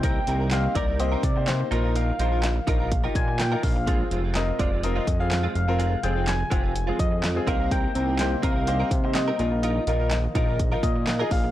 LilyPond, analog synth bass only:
\new Staff \with { instrumentName = "Analog synth bass" } { \clef bass \time 4/4 \key bes \mixolydian \tempo 4 = 125 c,8 c,4 c,4 c4 bes,,8~ | bes,,8 bes,,4 bes,,4 bes,4 bes,,8~ | bes,,8 f,,4 f,,4 f,4 f,,8~ | f,,8 f,,4 f,,4 f,4 c,8~ |
c,8 c,4 c,4 c4 bes,,8~ | bes,,8 bes,,4 bes,,4 bes,4 bes,,8 | }